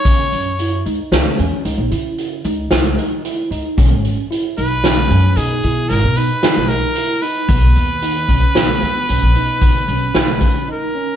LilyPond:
<<
  \new Staff \with { instrumentName = "Trumpet" } { \time 7/4 \key b \major \tempo 4 = 113 cis''4. r1 r4. | r4. b'4. gis'4 ais'8 b'4 ais'4 b'8~ | b'1. ais'4 | }
  \new Staff \with { instrumentName = "Tine electric piano" } { \time 7/4 \key b \major cis'4 e'8 dis'8 cis'8 cis'8 dis'8 e'4 dis'8 e'8 dis'8 e'8 dis'8 | cis'4 e'8 dis'8 cis'8 cis'8 dis'8 e'4 dis'8 e'8 dis'8 e'8 dis'8 | b4 dis'8 cis'8 b8 b8 cis'8 dis'4 cis'8 dis'8 cis'8 dis'8 cis'8 | }
  \new Staff \with { instrumentName = "Upright bass" } { \clef bass \time 7/4 \key b \major r8 fis,4 cis,16 r16 cis,16 r16 e,16 r16 cis,16 ais,,16 cis4 cis,8 cis,8 r4 cis,16 r16 | b,,16 gis,,8 r8. b,,4 fis,8 b,8 b,8 gis,,16 b,8 r8 b,,8 r4 r16 | b,,8 dis,4 b,,16 r16 b,,16 r16 dis,16 r16 b,,16 ais,,16 b,4 b,,8 b,,8 r4. | }
  \new DrumStaff \with { instrumentName = "Drums" } \drummode { \time 7/4 <hh bd>8 hh8 hh8 hh8 <hh sn>8 hh8 hh8 hh8 hh8 hh8 <hh sn>8 hh8 hh8 hh8 | <hh bd>8 hh8 hh8 hh8 <hh sn>8 hh8 hh8 hh8 <hh sn>8 hh8 <hh sn>8 hh8 hh8 hh8 | <hh bd>8 hh8 hh8 <hh bd>8 <hh sn>8 hh8 hh8 hh8 <hh bd>8 hh8 <hh sn>8 <hh bd>8 r4 | }
>>